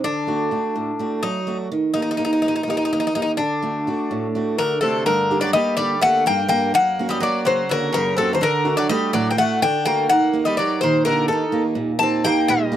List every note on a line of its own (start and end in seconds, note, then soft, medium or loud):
0.04 0.50 D3 medium
0.04 1.28 D4 medium
0.27 0.50 A3 soft
0.27 0.50 D4 soft
0.27 0.51 F#4 soft
0.51 0.90 A3 soft
0.51 0.90 D4 soft
0.51 0.90 F#4 soft
0.76 1.22 A2 medium
0.99 1.38 A3 soft
0.99 1.38 D4 soft
0.99 1.38 F#4 soft
1.23 1.70 F#3 medium
1.23 1.57 D#4 medium
1.47 1.66 A3 soft
1.47 1.67 D4 soft
1.47 1.67 F#4 soft
1.72 2.18 D#3 medium
1.94 2.18 A#3 soft
1.94 2.01 D#4 medium
1.94 2.18 D#4 soft
1.94 2.19 G4 soft
2.02 2.10 D#4 medium
2.11 2.16 D#4 medium
2.17 2.58 A#3 soft
2.17 2.23 D#4 medium
2.17 2.58 D#4 soft
2.17 2.59 G4 soft
2.25 2.32 D#4 medium
2.33 2.41 D#4 medium
2.42 2.91 A#2 medium
2.42 2.47 D#4 medium
2.48 2.54 D#4 medium
2.56 2.62 D#4 medium
2.63 2.69 D#4 soft
2.67 3.06 A#3 soft
2.67 3.06 D#4 soft
2.67 2.76 D#4 medium
2.67 3.07 G4 soft
2.77 2.84 D#4 medium
2.85 2.91 D#4 medium
2.92 3.39 D#3 medium
2.92 2.99 D#4 medium
3.00 3.06 D#4 medium
3.07 3.14 D#4 medium
3.15 3.35 A#3 soft
3.15 3.21 D#4 medium
3.15 3.35 D#4 soft
3.15 3.35 G4 soft
3.22 3.31 D#4 medium
3.37 3.86 D3 medium
3.37 4.54 D4 medium
3.62 3.86 A3 soft
3.62 3.86 D4 soft
3.62 3.87 F#4 soft
3.87 4.26 A3 soft
3.87 4.26 D4 soft
3.87 4.26 F#4 soft
4.11 4.58 A2 medium
4.35 4.74 A3 soft
4.35 4.74 D4 soft
4.35 4.74 F#4 soft
4.58 4.81 D3 medium
4.58 5.06 D3 medium
4.58 4.80 A#4 medium
4.81 5.05 C3 medium
4.81 5.02 A3 soft
4.81 5.02 D4 soft
4.81 5.03 F#4 soft
4.81 5.06 A4 medium
5.06 5.53 G2 medium
5.06 5.40 D3 medium
5.06 5.40 A#4 medium
5.31 5.53 A#3 soft
5.31 5.53 D4 soft
5.31 5.54 G4 medium
5.41 5.53 F#3 medium
5.41 5.53 D5 medium
5.53 5.76 G3 medium
5.53 5.93 A#3 medium
5.53 5.93 D4 soft
5.53 5.94 G4 medium
5.53 5.76 D#5 medium
5.77 6.25 D3 medium
5.77 6.00 G3 medium
5.77 6.00 D5 medium
6.01 6.25 A3 medium
6.01 6.41 A#3 medium
6.01 6.42 D4 soft
6.01 6.42 G4 medium
6.01 6.25 F#5 loud
6.26 6.74 G2 medium
6.26 6.47 A#3 medium
6.26 6.48 G5 loud
6.48 6.72 A#3 medium
6.48 6.70 A#3 soft
6.48 6.70 D4 soft
6.48 6.71 G4 medium
6.48 6.74 G5 loud
6.74 7.21 F#2 medium
6.74 7.08 A#3 medium
6.74 7.08 F#5 loud
6.99 7.20 A#3 soft
6.99 7.21 C#4 soft
6.99 7.21 F#4 soft
7.09 7.20 G3 medium
7.09 7.23 D#5 medium
7.20 7.44 F#3 medium
7.20 7.60 A#3 medium
7.20 7.61 C#4 soft
7.20 7.61 F#4 medium
7.20 7.45 D5 medium
7.45 7.93 C#3 medium
7.45 7.68 F#3 medium
7.45 7.69 C5 medium
7.69 7.92 D3 medium
7.69 8.09 A#3 medium
7.69 8.09 C#4 soft
7.69 8.09 F#4 medium
7.69 7.93 A#4 medium
7.93 8.41 F#2 medium
7.93 8.16 C#3 medium
7.93 8.17 A#4 medium
8.17 8.33 C3 medium
8.17 8.37 A#3 soft
8.17 8.37 C#4 soft
8.17 8.38 F#4 medium
8.17 8.34 A4 medium
8.33 8.41 D#3 medium
8.33 8.42 C5 medium
8.41 8.75 D3 medium
8.41 8.88 D3 medium
8.41 8.76 A#4 medium
8.65 8.88 A3 soft
8.65 8.89 D4 soft
8.65 8.89 F#4 medium
8.77 8.89 F#3 medium
8.77 8.89 D5 medium
8.89 9.13 G3 medium
8.89 9.28 A3 medium
8.89 9.28 D4 soft
8.89 9.28 F#4 medium
8.89 9.12 D#5 medium
9.13 9.60 A2 medium
9.13 9.31 F#3 medium
9.13 9.30 D5 medium
9.31 9.37 A#3 medium
9.31 9.37 G5 medium
9.37 9.76 A3 soft
9.37 9.61 A3 medium
9.37 9.76 D4 soft
9.37 9.76 F#4 medium
9.37 9.60 F#5 medium
9.62 10.08 D3 medium
9.62 9.85 D4 medium
9.62 9.84 G5 loud
9.86 10.05 A3 soft
9.86 10.08 A#3 medium
9.86 10.05 D4 soft
9.86 10.05 F#4 medium
9.86 10.08 G5 medium
10.10 10.56 D#3 medium
10.10 10.44 A#3 medium
10.10 10.45 F#5 medium
10.33 10.57 A#3 soft
10.33 10.57 D#4 soft
10.33 10.58 G4 soft
10.45 10.57 G3 medium
10.45 10.57 D#5 medium
10.57 10.80 F#3 medium
10.57 10.96 A#3 soft
10.57 10.96 D#4 soft
10.57 10.97 G4 medium
10.57 10.80 D5 medium
10.81 11.28 A#2 medium
10.81 11.05 D#3 medium
10.81 11.05 C5 medium
11.05 11.28 D3 medium
11.05 11.43 A#3 soft
11.05 11.44 D#4 soft
11.05 11.44 G4 medium
11.05 11.28 A#4 medium
11.28 11.76 D#3 medium
11.28 11.62 A4 medium
11.32 11.64 D#3 soft
11.52 11.91 A#3 medium
11.52 11.91 D#4 soft
11.52 11.91 G4 medium
11.75 12.23 A#2 medium
11.99 12.23 A#3 soft
11.99 12.24 C4 medium
11.99 12.23 D#4 soft
11.99 12.23 G4 soft
11.99 12.22 A5 medium
12.24 12.63 A#3 soft
12.24 12.48 A#3 medium
12.24 12.63 D#4 soft
12.24 12.63 G4 soft
12.24 12.47 G5 medium
12.48 12.77 A#2 medium
12.48 12.77 G3 medium
12.48 12.77 D#5 medium
12.72 12.77 A#3 medium
12.72 12.77 D#4 soft
12.72 12.77 G4 medium